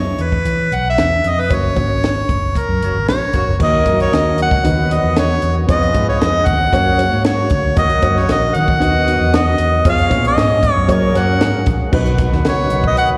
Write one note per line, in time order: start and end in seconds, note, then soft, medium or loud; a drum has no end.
0.00 0.13 F#2 medium
0.00 0.15 E3 medium
0.00 0.46 B3 medium
0.00 0.46 E4 medium
0.00 0.46 G#4 medium
0.00 0.24 C#5 medium
0.00 0.47 E5 medium
0.18 0.42 E2 medium
0.18 0.77 B4 medium
0.18 closed hi-hat medium
0.32 kick medium
0.45 0.68 E3 medium
0.45 closed hi-hat medium
0.72 0.95 B1 medium
0.72 0.87 F#5 medium
0.72 closed hi-hat medium
0.90 1.31 E5 medium
0.98 1.21 E2 medium
0.98 snare medium
0.98 closed hi-hat medium
1.24 1.48 F2 medium
1.24 closed hi-hat medium
1.29 1.42 D#5 medium
1.40 1.55 B4 loud
1.49 1.74 F#1 loud
1.49 1.70 A#3 medium
1.49 1.70 C#4 medium
1.49 1.70 F#4 medium
1.49 1.70 C#5 medium
1.49 kick loud
1.49 closed hi-hat medium
1.54 2.60 C#5 medium
1.75 2.23 G#1 medium
1.75 2.56 A#3 medium
1.75 2.56 C#4 medium
1.75 2.56 F#4 medium
1.75 2.56 C#5 medium
1.75 kick medium
1.75 closed hi-hat medium
2.04 snare medium
2.04 closed hi-hat medium
2.29 2.52 F#1 medium
2.29 kick medium
2.29 closed hi-hat medium
2.55 3.08 A#4 medium
2.55 kick medium
2.55 closed hi-hat medium
2.69 2.80 F#2 medium
2.82 2.94 F#1 medium
2.82 2.94 A#3 medium
2.82 2.94 F#4 medium
2.82 2.94 C#5 medium
2.82 closed hi-hat medium
2.95 3.06 G#1 medium
3.08 3.19 A#1 medium
3.08 3.19 A#3 medium
3.08 3.20 F#4 medium
3.08 3.19 C#5 medium
3.08 3.57 C#5 loud
3.08 snare loud
3.08 closed hi-hat medium
3.33 3.45 F#1 medium
3.33 3.50 A#3 medium
3.33 3.50 F#4 medium
3.33 3.50 C#5 loud
3.33 kick medium
3.33 closed hi-hat medium
3.47 3.58 F#1 medium
3.59 3.86 D#2 medium
3.59 4.34 D#3 medium
3.59 5.67 D#3 medium
3.59 5.66 F#3 medium
3.59 4.37 F#3 medium
3.59 3.80 A#3 medium
3.59 4.63 A#3 medium
3.59 3.80 D#4 medium
3.59 4.38 D#4 medium
3.59 5.66 F#4 medium
3.59 3.80 F#4 medium
3.59 4.38 A#4 medium
3.59 3.80 D#5 medium
3.59 3.98 D#5 medium
3.59 kick loud
3.59 crash loud
3.85 4.09 F#2 medium
3.85 4.64 A#3 medium
3.85 4.62 D#4 medium
3.85 3.92 E4 medium
3.85 4.65 A#4 medium
3.85 kick medium
3.85 closed hi-hat medium
3.92 4.63 F#4 medium
4.00 4.16 C#5 loud
4.00 closed hi-hat soft
4.12 4.47 D#2 medium
4.12 4.40 D#5 medium
4.12 snare medium
4.12 closed hi-hat medium
4.38 closed hi-hat medium
4.42 4.95 F#5 loud
4.51 4.63 C#2 medium
4.51 kick medium
4.63 4.98 D#2 loud
4.63 5.39 D#3 medium
4.63 5.41 F#3 medium
4.63 6.70 B3 medium
4.63 4.85 B3 medium
4.63 4.85 D#4 medium
4.63 5.41 D#4 medium
4.63 4.85 F#4 medium
4.63 5.42 B4 medium
4.63 4.86 D#5 medium
4.63 closed hi-hat medium
4.90 5.50 B3 medium
4.90 5.50 D#4 medium
4.90 5.50 F#4 soft
4.90 4.97 D5 medium
4.90 5.18 D#5 medium
4.90 closed hi-hat medium
4.97 5.54 D#5 medium
5.03 5.38 E2 medium
5.16 5.56 C#5 loud
5.16 snare loud
5.16 closed hi-hat medium
5.42 5.66 E2 medium
5.42 closed hi-hat medium
5.67 5.92 F2 medium
5.67 6.72 F3 medium
5.67 6.46 G#3 medium
5.67 5.88 B3 medium
5.67 6.72 C#4 medium
5.67 5.88 F4 medium
5.67 6.46 F4 medium
5.67 6.71 G#4 medium
5.67 5.88 G#4 medium
5.67 6.46 B4 medium
5.67 5.89 C#5 medium
5.67 6.06 D#5 loud
5.67 kick loud
5.67 closed hi-hat loud
5.83 closed hi-hat soft
5.93 6.18 G#2 medium
5.93 6.72 B3 medium
5.93 6.73 F4 medium
5.93 6.72 G#4 medium
5.93 6.73 D#5 medium
5.93 kick medium
5.93 closed hi-hat medium
6.09 6.23 C#5 medium
6.21 6.44 F2 medium
6.21 6.48 D#5 loud
6.21 snare loud
6.21 closed hi-hat medium
6.46 6.70 D#2 medium
6.46 7.24 F#5 loud
6.46 kick loud
6.46 closed hi-hat medium
6.72 7.07 F#2 medium
6.72 7.76 C#3 medium
6.72 8.79 F#3 medium
6.72 8.79 A#3 medium
6.72 6.93 A#3 medium
6.72 7.50 A#3 medium
6.72 6.94 C#4 medium
6.72 7.75 F#4 medium
6.72 6.93 F#4 medium
6.72 7.50 F#4 medium
6.72 6.94 C#5 medium
6.72 7.50 C#5 medium
6.72 kick medium
6.72 closed hi-hat medium
6.97 7.04 G#3 soft
6.97 7.58 C#4 medium
6.97 7.58 F#4 medium
6.97 7.58 C#5 medium
6.97 closed hi-hat medium
7.03 7.60 A#3 medium
7.12 7.46 G#2 medium
7.25 7.73 C#5 medium
7.25 7.73 C#6 medium
7.25 snare loud
7.25 closed hi-hat medium
7.50 7.74 D2 loud
7.50 kick medium
7.50 closed hi-hat medium
7.75 8.00 D#2 medium
7.75 9.83 D#3 medium
7.75 8.51 D#3 medium
7.75 7.96 A#3 medium
7.75 7.96 D#4 medium
7.75 8.54 D#4 medium
7.75 9.82 F#4 medium
7.75 7.97 F#4 medium
7.75 8.54 A#4 medium
7.75 7.97 D#5 medium
7.75 8.20 D#5 loud
7.75 8.54 F#5 medium
7.75 8.14 D#6 medium
7.75 kick loud
7.75 closed hi-hat loud
7.90 closed hi-hat soft
8.01 8.26 F#2 medium
8.01 8.80 A#3 medium
8.01 8.78 D#4 medium
8.01 8.79 F#4 medium
8.01 8.81 C#5 medium
8.01 kick loud
8.01 closed hi-hat medium
8.17 8.30 C#5 medium
8.17 8.30 C#6 medium
8.17 snare soft
8.29 8.52 A#1 medium
8.29 8.57 D#5 medium
8.29 snare medium
8.29 closed hi-hat medium
8.55 8.78 D#3 medium
8.55 9.37 F#5 loud
8.55 9.34 F#6 medium
8.55 closed hi-hat medium
8.68 kick medium
8.79 9.15 D#2 loud
8.79 9.55 D#3 medium
8.79 9.85 F#3 medium
8.79 9.01 B3 medium
8.79 9.58 B3 medium
8.79 10.88 B3 medium
8.79 9.01 D#4 medium
8.79 9.02 F#4 medium
8.79 9.58 F#4 medium
8.79 9.02 D#5 medium
8.79 9.58 D#5 medium
8.79 closed hi-hat medium
9.06 9.66 B3 medium
9.06 9.66 D#4 medium
9.06 9.67 F#4 medium
9.06 9.67 D#5 medium
9.06 closed hi-hat medium
9.20 9.54 E2 medium
9.34 9.86 D#5 loud
9.34 9.86 D#6 medium
9.34 snare loud
9.34 closed hi-hat loud
9.58 9.82 E2 loud
9.58 closed hi-hat medium
9.85 10.08 F2 medium
9.85 10.88 F3 medium
9.85 10.63 G#3 medium
9.85 10.05 B3 medium
9.85 10.88 C#4 medium
9.85 10.05 F4 medium
9.85 10.63 F4 medium
9.85 11.91 G#4 medium
9.85 10.05 G#4 medium
9.85 10.05 C#5 medium
9.85 10.63 C#5 medium
9.85 10.22 F6 medium
9.85 kick loud
9.85 closed hi-hat loud
9.89 10.24 F5 loud
9.98 closed hi-hat soft
10.09 10.34 A#2 loud
10.09 10.88 B3 medium
10.09 10.17 E4 medium
10.09 10.86 G#4 medium
10.09 10.87 C#5 medium
10.09 kick medium
10.09 closed hi-hat medium
10.16 10.92 F4 medium
10.25 10.72 D#5 loud
10.25 10.86 D#6 medium
10.25 closed hi-hat medium
10.37 10.71 G#2 loud
10.37 snare loud
10.37 closed hi-hat medium
10.63 kick medium
10.63 closed hi-hat medium
10.72 10.87 F#2 medium
10.72 10.92 C#5 loud
10.87 11.12 F#3 loud
10.87 11.91 F#3 medium
10.87 11.66 F#3 medium
10.87 11.09 A#3 medium
10.87 11.92 A#3 medium
10.87 11.92 C#4 medium
10.87 11.66 C#4 medium
10.87 11.09 F#4 medium
10.87 11.09 G#4 medium
10.87 11.66 A#4 loud
10.87 11.10 C#5 loud
10.87 11.16 C#6 medium
10.87 kick medium
10.87 closed hi-hat medium
10.92 11.21 C#5 medium
11.13 11.40 F#2 medium
11.13 11.73 A#3 medium
11.13 11.74 F#4 medium
11.13 11.74 G#4 medium
11.13 11.74 C#5 medium
11.13 11.68 F#6 medium
11.13 snare soft
11.13 closed hi-hat medium
11.19 11.69 F#5 loud
11.40 11.63 G#2 medium
11.40 snare loud
11.40 closed hi-hat medium
11.66 11.78 A#1 medium
11.66 kick loud
11.66 closed hi-hat medium
11.92 12.27 B1 loud
11.92 12.66 B2 medium
11.92 13.18 D#3 medium
11.92 13.18 F#3 medium
11.92 13.18 B3 medium
11.92 12.71 D#4 medium
11.92 13.18 D#4 medium
11.92 12.72 F#4 medium
11.92 13.18 F#4 medium
11.92 13.18 B4 medium
11.92 12.72 B4 loud
11.92 13.18 F#5 medium
11.92 kick loud
11.92 crash loud
12.06 closed hi-hat soft
12.18 kick medium
12.18 closed hi-hat medium
12.32 12.43 D#2 medium
12.32 snare soft
12.45 12.68 C#2 medium
12.45 12.83 C#5 medium
12.45 snare medium
12.45 closed hi-hat medium
12.70 12.93 B1 medium
12.70 closed hi-hat medium
12.84 12.98 D#5 medium
12.84 kick medium
12.97 13.10 F#5 loud
12.97 closed hi-hat medium
13.10 muted fingered electric bass stroke soft